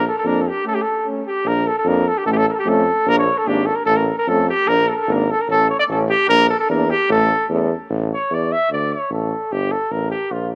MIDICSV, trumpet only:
0, 0, Header, 1, 2, 480
1, 0, Start_track
1, 0, Tempo, 402414
1, 781, Time_signature, 2, 2, 24, 8
1, 12586, End_track
2, 0, Start_track
2, 0, Title_t, "Trumpet"
2, 0, Program_c, 0, 56
2, 93, Note_on_c, 0, 69, 80
2, 190, Note_off_c, 0, 69, 0
2, 216, Note_on_c, 0, 69, 84
2, 316, Note_on_c, 0, 70, 85
2, 334, Note_off_c, 0, 69, 0
2, 493, Note_on_c, 0, 69, 61
2, 510, Note_off_c, 0, 70, 0
2, 570, Note_on_c, 0, 67, 82
2, 588, Note_off_c, 0, 69, 0
2, 788, Note_off_c, 0, 67, 0
2, 795, Note_on_c, 0, 69, 99
2, 891, Note_on_c, 0, 67, 82
2, 909, Note_off_c, 0, 69, 0
2, 976, Note_on_c, 0, 69, 83
2, 994, Note_off_c, 0, 67, 0
2, 1273, Note_off_c, 0, 69, 0
2, 1514, Note_on_c, 0, 67, 89
2, 1757, Note_on_c, 0, 70, 109
2, 1775, Note_off_c, 0, 67, 0
2, 1993, Note_on_c, 0, 69, 87
2, 2011, Note_off_c, 0, 70, 0
2, 2109, Note_off_c, 0, 69, 0
2, 2119, Note_on_c, 0, 69, 81
2, 2237, Note_on_c, 0, 70, 81
2, 2255, Note_off_c, 0, 69, 0
2, 2476, Note_on_c, 0, 69, 89
2, 2494, Note_off_c, 0, 70, 0
2, 2595, Note_on_c, 0, 67, 66
2, 2613, Note_off_c, 0, 69, 0
2, 2689, Note_off_c, 0, 67, 0
2, 2697, Note_on_c, 0, 69, 103
2, 2763, Note_on_c, 0, 67, 83
2, 2781, Note_off_c, 0, 69, 0
2, 2828, Note_on_c, 0, 69, 107
2, 2845, Note_off_c, 0, 67, 0
2, 2945, Note_off_c, 0, 69, 0
2, 2960, Note_on_c, 0, 69, 83
2, 2978, Note_on_c, 0, 70, 63
2, 2996, Note_off_c, 0, 69, 0
2, 3017, Note_on_c, 0, 69, 78
2, 3035, Note_off_c, 0, 70, 0
2, 3071, Note_off_c, 0, 69, 0
2, 3086, Note_on_c, 0, 67, 82
2, 3201, Note_on_c, 0, 69, 95
2, 3218, Note_off_c, 0, 67, 0
2, 3677, Note_on_c, 0, 70, 118
2, 3695, Note_off_c, 0, 69, 0
2, 3785, Note_off_c, 0, 70, 0
2, 3792, Note_on_c, 0, 73, 86
2, 4026, Note_on_c, 0, 69, 88
2, 4044, Note_off_c, 0, 73, 0
2, 4143, Note_on_c, 0, 67, 82
2, 4161, Note_off_c, 0, 69, 0
2, 4364, Note_on_c, 0, 69, 96
2, 4381, Note_off_c, 0, 67, 0
2, 4477, Note_on_c, 0, 70, 74
2, 4495, Note_off_c, 0, 69, 0
2, 4589, Note_off_c, 0, 70, 0
2, 4596, Note_on_c, 0, 69, 118
2, 4727, Note_on_c, 0, 70, 73
2, 4745, Note_off_c, 0, 69, 0
2, 4976, Note_off_c, 0, 70, 0
2, 4987, Note_on_c, 0, 70, 95
2, 5106, Note_on_c, 0, 69, 98
2, 5124, Note_off_c, 0, 70, 0
2, 5345, Note_off_c, 0, 69, 0
2, 5351, Note_on_c, 0, 67, 110
2, 5577, Note_on_c, 0, 70, 127
2, 5595, Note_off_c, 0, 67, 0
2, 5826, Note_on_c, 0, 69, 81
2, 5843, Note_off_c, 0, 70, 0
2, 5855, Note_on_c, 0, 70, 77
2, 5873, Note_off_c, 0, 69, 0
2, 5908, Note_on_c, 0, 69, 86
2, 5926, Note_off_c, 0, 70, 0
2, 5929, Note_on_c, 0, 70, 58
2, 5932, Note_off_c, 0, 69, 0
2, 5960, Note_on_c, 0, 69, 88
2, 5978, Note_off_c, 0, 70, 0
2, 6081, Note_on_c, 0, 70, 99
2, 6099, Note_off_c, 0, 69, 0
2, 6332, Note_on_c, 0, 69, 103
2, 6350, Note_off_c, 0, 70, 0
2, 6457, Note_on_c, 0, 70, 74
2, 6475, Note_off_c, 0, 69, 0
2, 6554, Note_off_c, 0, 70, 0
2, 6562, Note_on_c, 0, 69, 115
2, 6778, Note_off_c, 0, 69, 0
2, 6793, Note_on_c, 0, 73, 77
2, 6902, Note_off_c, 0, 73, 0
2, 6909, Note_on_c, 0, 74, 115
2, 6962, Note_off_c, 0, 74, 0
2, 7043, Note_on_c, 0, 69, 78
2, 7148, Note_off_c, 0, 69, 0
2, 7269, Note_on_c, 0, 67, 102
2, 7491, Note_off_c, 0, 67, 0
2, 7500, Note_on_c, 0, 70, 126
2, 7727, Note_off_c, 0, 70, 0
2, 7740, Note_on_c, 0, 69, 96
2, 7856, Note_off_c, 0, 69, 0
2, 7864, Note_on_c, 0, 69, 95
2, 7977, Note_off_c, 0, 69, 0
2, 7995, Note_on_c, 0, 70, 88
2, 8231, Note_on_c, 0, 67, 100
2, 8249, Note_off_c, 0, 70, 0
2, 8470, Note_off_c, 0, 67, 0
2, 8481, Note_on_c, 0, 69, 109
2, 8922, Note_off_c, 0, 69, 0
2, 9705, Note_on_c, 0, 73, 76
2, 9945, Note_on_c, 0, 74, 81
2, 9963, Note_off_c, 0, 73, 0
2, 10166, Note_on_c, 0, 76, 107
2, 10184, Note_off_c, 0, 74, 0
2, 10394, Note_off_c, 0, 76, 0
2, 10402, Note_on_c, 0, 74, 80
2, 10645, Note_on_c, 0, 73, 73
2, 10663, Note_off_c, 0, 74, 0
2, 10877, Note_off_c, 0, 73, 0
2, 10887, Note_on_c, 0, 69, 71
2, 11355, Note_on_c, 0, 67, 89
2, 11373, Note_off_c, 0, 69, 0
2, 11586, Note_on_c, 0, 69, 80
2, 11604, Note_off_c, 0, 67, 0
2, 11827, Note_on_c, 0, 70, 76
2, 11844, Note_off_c, 0, 69, 0
2, 12045, Note_off_c, 0, 70, 0
2, 12052, Note_on_c, 0, 67, 76
2, 12303, Note_on_c, 0, 65, 69
2, 12321, Note_off_c, 0, 67, 0
2, 12543, Note_off_c, 0, 65, 0
2, 12586, End_track
0, 0, End_of_file